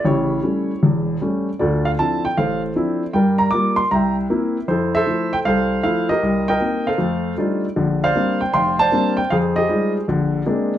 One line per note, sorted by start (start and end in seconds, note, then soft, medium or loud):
0.05 0.38 A1 medium
0.05 0.38 C#3 medium
0.05 0.79 E4 soft
0.05 0.79 G4 soft
0.05 0.78 C#5 medium
0.43 0.71 G3 soft
0.43 0.70 A3 soft
0.43 0.71 C#4 soft
0.83 1.16 E1 soft
0.83 1.16 E2 medium
1.21 1.48 G3 soft
1.21 1.48 A3 soft
1.21 1.48 C#4 medium
1.59 1.93 D2 medium
1.59 1.93 D3 medium
1.59 2.33 F4 soft
1.59 2.33 A4 soft
1.59 1.86 D5 medium
1.85 1.90 F5 medium
1.99 2.25 F3 soft
1.99 2.25 C4 soft
1.99 2.26 D4 soft
1.99 2.26 E4 soft
1.99 2.22 A5 medium
2.25 2.36 G5 medium
2.37 2.70 A1 medium
2.37 3.10 A4 soft
2.37 3.10 C5 soft
2.37 2.61 F5 medium
2.76 3.02 F3 soft
2.76 3.02 C4 soft
2.76 3.02 D4 soft
2.76 3.02 E4 medium
3.13 3.47 G2 medium
3.13 3.47 G3 medium
3.13 3.88 A#4 soft
3.13 3.87 D5 soft
3.13 3.40 G5 medium
3.38 3.52 A#5 medium
3.51 3.79 G3 soft
3.51 3.80 A#3 soft
3.51 3.80 F4 soft
3.51 3.75 D6 medium
3.76 3.89 C6 medium
3.91 4.24 C2 medium
3.91 4.65 E5 soft
3.91 4.65 G5 soft
3.91 4.15 A#5 medium
4.30 4.56 A#3 soft
4.30 4.57 C4 soft
4.30 4.57 E4 medium
4.68 5.01 F2 medium
4.68 5.05 E4 medium
4.68 4.95 A4 medium
4.68 4.94 C5 medium
4.95 5.46 A4 medium
4.95 5.46 C5 medium
4.95 5.34 E5 medium
5.06 5.33 F3 soft
5.06 5.33 A3 soft
5.06 5.33 E4 soft
5.33 5.38 G5 medium
5.45 5.79 C2 medium
5.45 6.19 A4 medium
5.45 6.19 C5 medium
5.45 5.81 F5 medium
5.83 6.10 F3 medium
5.83 6.10 A3 soft
5.83 6.11 E4 medium
5.83 6.07 F5 medium
6.09 6.83 G4 medium
6.09 6.48 A#4 medium
6.09 6.48 D#5 medium
6.23 6.56 C2 medium
6.48 6.97 A#4 medium
6.48 6.96 D#5 medium
6.48 6.87 G5 medium
6.60 6.87 A#3 soft
6.60 6.88 C4 soft
6.60 6.88 D#4 soft
6.87 7.60 A4 medium
6.87 7.60 C5 soft
6.87 7.34 F5 medium
6.98 7.32 F2 medium
6.98 7.32 A3 medium
7.37 7.64 G3 soft
7.37 7.64 A3 soft
7.37 7.65 D4 soft
7.37 7.65 D#4 soft
7.37 7.65 F4 medium
7.76 8.10 A#1 medium
7.76 8.09 D3 medium
8.04 8.76 C5 medium
8.04 8.76 D5 medium
8.04 8.39 F5 medium
8.15 8.42 G3 soft
8.15 8.42 A#3 soft
8.15 8.42 C4 soft
8.15 8.42 D4 soft
8.41 8.52 G5 medium
8.54 8.87 F1 medium
8.54 9.27 F5 medium
8.54 9.15 G5 medium
8.54 8.77 C6 medium
8.79 9.28 C5 medium
8.79 9.28 D5 medium
8.79 9.15 A5 loud
8.92 9.19 G3 soft
8.92 9.19 A#3 medium
8.92 9.19 C4 soft
8.92 9.19 D4 medium
9.17 9.30 G5 medium
9.30 9.64 F2 medium
9.30 9.57 G#4 medium
9.30 10.04 C5 medium
9.30 9.36 F5 medium
9.56 10.05 G4 medium
9.56 10.05 G#4 medium
9.56 9.92 D#5 medium
9.69 9.96 G3 soft
9.69 9.96 G#3 soft
9.69 9.96 D#4 soft
9.69 9.96 F4 soft
10.08 10.41 A#1 medium
10.08 10.41 D3 medium
10.46 10.73 G#3 medium
10.46 10.73 A#3 soft
10.46 10.73 C4 soft
10.46 10.73 D4 medium